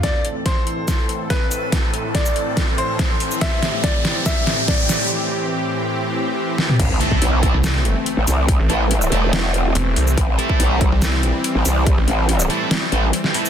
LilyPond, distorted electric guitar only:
\new Staff \with { instrumentName = "Distorted electric guitar" } { \time 4/4 \key a \minor \tempo 4 = 142 r1 | r1 | r1 | r1 |
r8 <a e' a'>4 <a e' a'>16 r2 r16 | r8 <a e' a'>16 r8. <a e' a'>8 r2 | r8 <a e' a'>4 r2 r8 | r4. <a e' a'>8 r8 <a e' a'>16 r8. <a e' a'>16 r16 | }